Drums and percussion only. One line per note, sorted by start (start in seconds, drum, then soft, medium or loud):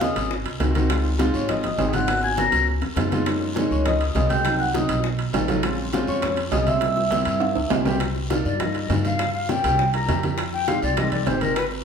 0.01 high bongo medium
0.01 high conga loud
0.01 high timbale medium
0.01 low timbale medium
0.01 short guiro medium
0.15 high bongo soft
0.15 high conga soft
0.15 high timbale medium
0.15 short guiro medium
0.31 high bongo medium
0.31 high conga soft
0.31 long guiro medium
0.46 high bongo soft
0.46 high conga soft
0.46 high timbale medium
0.60 high bongo soft
0.60 low bongo medium
0.60 high conga medium
0.60 high timbale medium
0.60 low timbale medium
0.60 short guiro medium
0.75 high conga medium
0.75 high timbale medium
0.75 short guiro medium
0.90 high bongo medium
0.90 high conga soft
0.90 high timbale loud
0.90 long guiro medium
1.05 high bongo soft
1.05 high conga soft
1.19 high bongo medium
1.19 high conga loud
1.19 high timbale medium
1.19 low timbale medium
1.19 short guiro medium
1.34 high bongo soft
1.34 high conga soft
1.34 short guiro medium
1.48 high bongo medium
1.48 high conga soft
1.48 low conga medium
1.48 high timbale medium
1.48 long guiro medium
1.64 high bongo soft
1.64 high conga soft
1.64 low conga medium
1.64 high timbale medium
1.78 high bongo soft
1.78 low bongo medium
1.78 high conga medium
1.78 high timbale medium
1.78 low timbale medium
1.78 short guiro medium
1.93 high conga medium
1.93 high timbale medium
1.93 short guiro medium
2.08 high bongo medium
2.08 high conga soft
2.08 high timbale loud
2.08 long guiro medium
2.23 high bongo soft
2.23 high conga soft
2.38 high bongo medium
2.38 high conga loud
2.38 high timbale medium
2.38 low timbale medium
2.38 short guiro medium
2.52 high bongo medium
2.52 high conga soft
2.52 high timbale medium
2.52 short guiro medium
2.67 high conga soft
2.67 long guiro medium
2.82 low bongo medium
2.82 high conga soft
2.82 high timbale medium
2.96 low bongo medium
2.96 high conga medium
2.96 high timbale medium
2.96 low timbale medium
2.96 short guiro medium
3.11 low bongo medium
3.11 high conga medium
3.11 high timbale medium
3.11 short guiro medium
3.26 high bongo medium
3.26 high conga soft
3.26 high timbale medium
3.26 long guiro medium
3.41 high bongo soft
3.41 high conga soft
3.56 high bongo medium
3.56 high conga loud
3.56 high timbale medium
3.56 low timbale medium
3.56 short guiro medium
3.71 high bongo soft
3.71 high conga soft
3.71 short guiro medium
3.85 high bongo medium
3.85 high conga soft
3.85 low conga medium
3.85 high timbale medium
3.85 long guiro medium
4.00 high bongo soft
4.00 high conga soft
4.00 high timbale medium
4.15 high bongo soft
4.15 low bongo medium
4.15 high conga medium
4.15 high timbale medium
4.15 low timbale medium
4.15 short guiro medium
4.30 high conga medium
4.30 high timbale medium
4.30 short guiro medium
4.45 high bongo medium
4.45 high conga soft
4.45 high timbale loud
4.45 long guiro medium
4.60 high bongo soft
4.60 high conga soft
4.74 high bongo medium
4.74 high conga loud
4.74 high timbale medium
4.74 low timbale medium
4.74 short guiro medium
4.89 high bongo soft
4.89 high conga soft
4.89 high timbale loud
4.89 short guiro medium
5.04 high bongo medium
5.04 high conga soft
5.04 long guiro medium
5.19 high bongo soft
5.19 high conga soft
5.19 high timbale medium
5.33 high bongo soft
5.33 low bongo medium
5.33 high conga medium
5.33 high timbale medium
5.33 low timbale medium
5.33 short guiro medium
5.48 high conga medium
5.48 high timbale medium
5.48 short guiro medium
5.63 high bongo medium
5.63 high conga soft
5.63 high timbale loud
5.63 long guiro medium
5.78 high bongo soft
5.78 high conga soft
5.93 high bongo medium
5.93 high conga loud
5.93 high timbale medium
5.93 low timbale medium
5.93 short guiro medium
6.07 high bongo soft
6.07 high conga soft
6.07 short guiro medium
6.22 high bongo medium
6.22 high conga soft
6.22 low conga medium
6.22 high timbale medium
6.22 long guiro medium
6.37 high bongo soft
6.37 high conga soft
6.37 high timbale medium
6.52 high bongo soft
6.52 low bongo medium
6.52 high conga medium
6.52 high timbale medium
6.52 low timbale medium
6.52 short guiro medium
6.67 high conga medium
6.67 high timbale medium
6.67 short guiro medium
6.81 high bongo medium
6.81 high timbale medium
6.81 long guiro medium
6.97 high bongo medium
6.97 high conga soft
7.11 high conga loud
7.11 high timbale medium
7.11 low timbale medium
7.11 short guiro medium
7.25 high conga soft
7.25 high timbale medium
7.25 short guiro medium
7.40 low bongo medium
7.40 high conga soft
7.40 high timbale medium
7.40 long guiro medium
7.55 high conga soft
7.55 high timbale medium
7.70 low bongo medium
7.70 high conga medium
7.70 low timbale loud
7.70 short guiro medium
7.85 low bongo medium
7.85 high conga medium
7.85 low timbale medium
7.85 short guiro medium
8.00 high bongo medium
8.00 high conga soft
8.00 high timbale medium
8.00 long guiro medium
8.16 high bongo soft
8.16 high conga soft
8.30 high bongo medium
8.30 high conga loud
8.30 high timbale medium
8.30 low timbale medium
8.30 short guiro medium
8.45 high bongo soft
8.45 high conga soft
8.45 short guiro medium
8.60 high bongo medium
8.60 high conga soft
8.60 low conga medium
8.60 high timbale medium
8.60 long guiro medium
8.75 high bongo soft
8.75 high conga soft
8.75 high timbale medium
8.90 high bongo soft
8.90 low bongo medium
8.90 high conga medium
8.90 high timbale medium
8.90 low timbale medium
8.90 short guiro medium
9.05 high conga medium
9.05 high timbale medium
9.05 short guiro medium
9.19 high bongo medium
9.19 high conga soft
9.19 high timbale medium
9.19 long guiro medium
9.34 high bongo soft
9.34 high conga soft
9.49 high bongo medium
9.49 high conga medium
9.49 high timbale medium
9.49 low timbale medium
9.49 short guiro medium
9.64 high bongo soft
9.64 high conga soft
9.64 high timbale medium
9.64 short guiro medium
9.79 high bongo medium
9.79 high conga soft
9.79 long guiro medium
9.94 high bongo soft
9.94 high conga soft
9.94 high timbale medium
10.08 high bongo soft
10.08 low bongo medium
10.08 high conga medium
10.08 high timbale medium
10.08 low timbale medium
10.08 short guiro medium
10.23 high conga medium
10.23 high timbale medium
10.23 short guiro medium
10.38 high bongo medium
10.38 high conga soft
10.38 high timbale medium
10.38 long guiro medium
10.53 high bongo soft
10.53 high conga soft
10.68 high bongo medium
10.68 high conga loud
10.68 high timbale medium
10.68 low timbale medium
10.68 short guiro medium
10.82 high bongo soft
10.82 high conga soft
10.82 short guiro medium
10.97 high bongo medium
10.97 high conga soft
10.97 low conga medium
10.97 high timbale medium
10.97 long guiro medium
11.12 high bongo soft
11.12 high conga soft
11.12 low conga medium
11.12 high timbale medium
11.27 high bongo soft
11.27 low bongo medium
11.27 high conga medium
11.27 high timbale medium
11.27 low timbale medium
11.27 short guiro medium
11.41 high conga medium
11.41 high timbale medium
11.41 short guiro medium
11.56 high bongo medium
11.56 high timbale loud
11.56 long guiro medium
11.71 high bongo soft
11.71 high conga soft